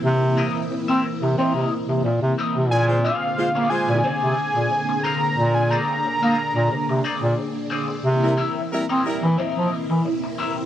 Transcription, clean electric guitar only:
\new Staff \with { instrumentName = "Clean electric guitar" } { \time 4/4 \key bes \major \tempo 4 = 90 r8 <c' e' bes' dis''>16 r8 <c' e' bes' e''>16 r8 <c' e' bes' dis''>8 r4 <c' e' bes' dis''>16 r16 | r8 <c' f' aes' f''>16 r8 <c' f' aes' d''>16 r8 <c' f' aes' d''>8 r4 <c' f' aes' f''>16 r16 | r8 <c' f' aes' d''>16 r8 <c' f' aes' f''>16 r4 <c' f' aes' d''>16 r8. <c' f' aes' d''>16 r16 | r8 <c' e' bes' e''>16 r8 <c' e' bes' dis''>16 r8 <c' e' bes' dis''>8 r4 <c' e' bes' e''>16 r16 | }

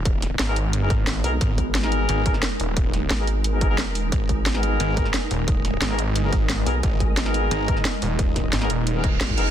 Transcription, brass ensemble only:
\new Staff \with { instrumentName = "Brass ensemble" } { \time 4/4 \key gis \minor \tempo 4 = 177 r4 r16 <b dis' gis' ais'>16 r8. <b dis' gis' ais'>16 r4 <b dis' gis' ais'>16 r16 | r4 r16 <b dis' gis' ais'>4~ <b dis' gis' ais'>16 <b dis' gis' ais'>16 r4 r16 | r4 r16 <b dis' gis' ais'>16 r8. <b dis' gis' ais'>16 <b dis' gis' ais'>16 <b dis' gis' ais'>16 r4 | r4 r16 <b dis' gis' ais'>4~ <b dis' gis' ais'>16 <b dis' gis' ais'>16 r4 r16 |
r4 r16 <b dis' gis' ais'>16 r8. <b dis' gis' ais'>16 r4 <b dis' gis' ais'>16 r16 | r4 r16 <b dis' gis' ais'>4~ <b dis' gis' ais'>16 <b dis' gis' ais'>16 r4 r16 | r4 r16 <b dis' gis' ais'>16 r8. <b dis' gis' ais'>16 r4 <b dis' gis' ais'>16 r16 | }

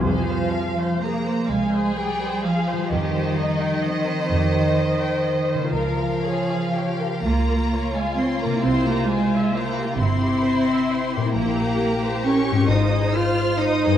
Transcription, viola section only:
\new Staff \with { instrumentName = "Viola section" } { \time 6/8 \key f \minor \tempo 4. = 43 << { c''2.~ | c''2. | bes'2. | c''2.~ |
c''2. | } \\ { aes'16 c''16 f''16 c''16 aes'16 c''16 f''16 c''16 aes'16 c''16 f''16 c''16 | g'16 c''16 ees''16 g''16 ees''16 c''16 g'16 c''16 ees''16 g''16 ees''16 c''16 | f'16 bes'16 des''16 f''16 des''16 bes'16 f'16 bes'16 des''16 f''16 des''16 bes'16 | e'16 g'16 c''16 e''16 c''16 g'16 e'16 g'16 c''16 e''16 c''16 g'16 |
e'16 g'16 bes'16 c''16 bes'16 g'16 f'16 aes'16 c''16 f''16 c''16 aes'16 | } >> }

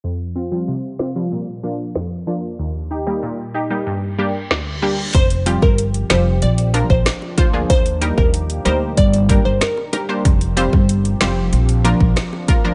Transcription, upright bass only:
\new Staff \with { instrumentName = "Upright bass" } { \clef bass \time 4/4 \key f \dorian \tempo 4 = 94 r1 | r1 | f,,8. g,,8. f,,8 bes,,8. bes,,16 r8 d,8 | ees,8. ees,8. d,8 g,,8. g,,16 r4 |
f,,8. g,,8. f,,8 bes,,8. bes,,16 r8 d,8 | }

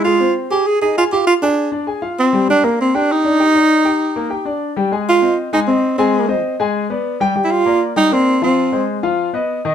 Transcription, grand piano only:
\new Staff \with { instrumentName = "Grand piano" } { \time 4/4 \key f \dorian \tempo 4 = 197 <aes aes'>8 <c' c''>4 <aes' aes''>4 <ees' ees''>8 <aes' aes''>8 <f' f''>8~ | <f' f''>8 <aes' aes''>4 <d' d''>8 <aes' aes''>8 <f' f''>4 <g g'>8 | <g g'>8 <bes bes'>4 <g' g''>4 <d' d''>8 <g' g''>8 <ees' d''>8~ | <ees' d''>8 <g' g''>4 <bes bes'>8 <g' g''>8 <d' d''>4 <g g'>8 |
<aes aes' aes''>4 <c' c'' ees''>4 <aes aes' aes''>8 <c' c'' ees''>4 <aes aes' aes''>8~ | <aes aes' aes''>8 <c' c'' ees''>4 <aes aes' aes''>4 <b b' d''>4 <g g' g''>8 | <g g' g''>4 <bes bes' d''>4 <g g' g''>8 <bes bes' d''>4 <f f' f''>8~ | <f f' f''>8 <aes aes' c''>4 <f f' f''>4 <b b' dis''>4 <dis dis' dis''>8 | }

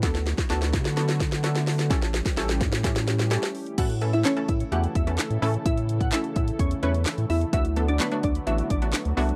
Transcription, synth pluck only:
\new Staff \with { instrumentName = "Synth pluck" } { \time 4/4 \key a \mixolydian \tempo 4 = 128 r1 | r1 | <fis' fis''>8 r16 <e' e''>16 <cis' cis''>8 <e' e''>16 r16 <fis' fis''>8 <e' e''>16 r4 r16 | <e' e''>8 r16 <fis' fis''>16 <e' e''>8 <e' e''>16 r16 <cis' cis''>8 <cis' cis''>16 r8. <e' e''>16 r16 |
<e' e''>8 r16 <d' d''>16 <b b'>8 <d' d''>16 r16 <e' e''>8 <d' d''>16 r4 r16 | }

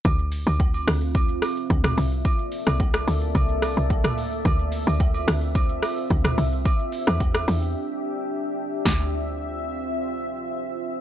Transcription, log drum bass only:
\new Staff \with { instrumentName = "Log drum bass" } { \clef bass \time 4/4 \key d \minor \tempo 4 = 109 d,8. d,8. d,4 r8 d,8 c,8 | r8. c,8. d,8 c,8. c,8. d,8 | d,8. d,8. d,4 r8 d,8 c,8 | r8. e,8. e,8 r2 |
d,1 | }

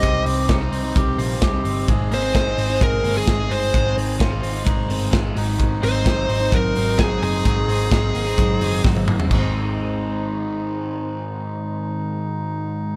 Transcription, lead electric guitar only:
\new Staff \with { instrumentName = "Lead electric guitar" } { \time 4/4 \key aes \major \tempo 4 = 129 ees''8 r2. r8 | r8 c''4. bes'8. aes'8. c''8~ | c''8 r2. r8 | r8 c''4. bes'4 aes'8 aes'8~ |
aes'2. r4 | r1 | r1 | }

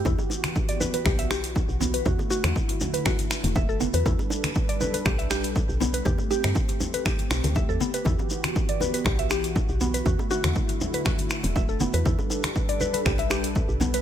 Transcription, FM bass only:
\new Staff \with { instrumentName = "FM bass" } { \clef bass \time 4/4 \key e \minor \tempo 4 = 120 e,16 r4. r16 b,,4~ b,,16 b,,8. | e,16 r8 e,16 r4. r16 e,,4 e,16 | e,16 r4. r16 b,,4~ b,,16 b,,8. | e,16 r8 g,16 r4. b,,16 d,8 e,16 r8 |
e,16 r4. r16 b,,4~ b,,16 b,,8. | e,16 r8 e,16 r4. r16 e,,4 e,16 | e,16 r4. r16 b,,4~ b,,16 b,,8. | }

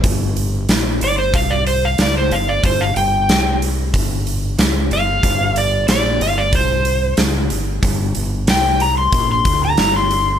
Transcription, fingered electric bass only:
\new Staff \with { instrumentName = "Fingered electric bass" } { \clef bass \time 4/4 \key g \minor \tempo 4 = 92 g,,4 bes,,8 g,,8 c,4 cis,8 g,,8 | g,,8 g,,8 c,4 g,,4 cis,8 g,,8 | g,,4 bes,,8 g,,8 c,4 cis,8 g,,8 | g,,8 g,,8 c,4 bes,,8 d,8 g,,4 | }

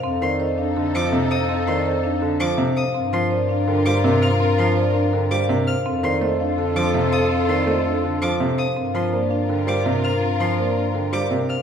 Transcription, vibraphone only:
\new Staff \with { instrumentName = "Vibraphone" } { \time 4/4 \key g \minor \tempo 4 = 165 f''8 d''8 ees''8 f''8 a''8 f''8 c''8 f''8 | f''8 d''8 ees''8 f''8 a''8 f''8 c''8 f''8 | f''8 c''8 d''8 f''8 g''8 f''8 bes'8 f''8 | f''8 c''8 d''8 f''8 g''8 f''8 bes'8 f''8 |
f''8 d''8 ees''8 f''8 a''8 f''8 c''8 f''8 | f''8 d''8 ees''8 f''8 a''8 f''8 c''8 f''8 | f''8 c''8 d''8 f''8 g''8 f''8 bes'8 f''8 | f''8 c''8 d''8 f''8 g''8 f''8 bes'8 f''8 | }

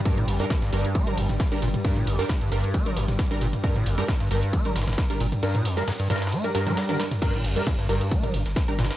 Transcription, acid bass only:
\new Staff \with { instrumentName = "Acid bass" } { \clef bass \time 4/4 \key g \minor \tempo 4 = 134 g,16 bes,16 f,16 g,16 g,16 g,16 g,8 bes16 f16 f,16 r8. bes,16 r16 | g,16 bes,16 f,16 g,16 g,16 g,16 g,8 bes16 f16 f,16 r8. bes,16 r16 | g,16 bes,16 f,16 g,16 g,16 g,16 g,8 bes16 f16 f,16 r8. bes,16 r16 | g,16 bes,16 f,16 g,16 g,16 g,16 g,8 bes16 f16 g,16 g8 cis16 g16 r16 |
g,16 bes,16 f,16 g,16 g,16 g,16 g,8 bes16 f16 f,16 r8. bes,16 r16 | }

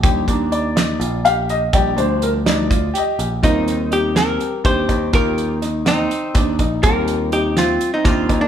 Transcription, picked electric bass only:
\new Staff \with { instrumentName = "Picked electric bass" } { \clef bass \time 7/8 \key ees \major \tempo 4 = 124 ees,8 ees,4. bes,,4. | bes,,8 d,2 r8 bes,,8 | ees,2 r8 ees,8 ees,8 | ees,2 r8 ees,8 bes,,8 |
ees,2 r8 ees,8 ees,8 | }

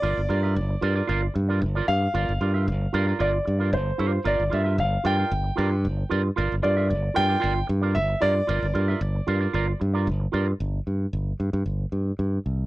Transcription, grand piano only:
\new Staff \with { instrumentName = "Grand piano" } { \time 4/4 \key g \dorian \tempo 4 = 114 d''2~ d''8 r4 f''8~ | f''2 d''4 c''4 | d''8 e''8 f''8 g''2 r8 | r8 d''4 g''4 r8 e''8 d''8~ |
d''2~ d''8 r4. | r1 | }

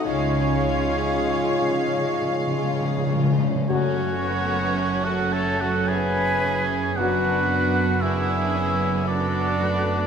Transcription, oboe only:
\new Staff \with { instrumentName = "Oboe" } { \time 3/4 \key fis \minor \tempo 4 = 55 cis''2~ cis''8 r8 | cis''4~ cis''16 fis''16 a''16 fis''16 gis''4 | fis''4 e''4 d''4 | }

